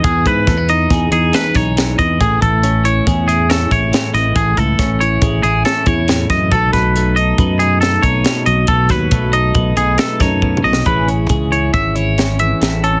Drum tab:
HH |x--x--x--x--x--x--x--x--x--x--|x--x--x--x--x--x--x--x--x--x--|x--x--x--x--x--x--x--x--x--x--|x--x--x--x--x--x--x--x--x--x--|
SD |------o-----o-----o--o--o-----|------------------o-----o--o--|------o-----------o-----o--o--|---o--------------o-----o-----|
T2 |------------------------------|------------------------------|------------------------------|------------------------------|
BD |o--o--o-----o--------o-----o--|o--o--------o--------o--------|o--o--o-----o--------o-----o--|o--o--------o--------o--------|

HH |x--x--x--x--x--x--x--x--------|x--x--x--x--x--x--x--x--x--x--|
SD |---o--------------o--o------o-|------------------o-----o-----|
T2 |--------------------------o---|------------------------------|
BD |o--o--o-----o--------o--o-----|o-----o-----o-----------------|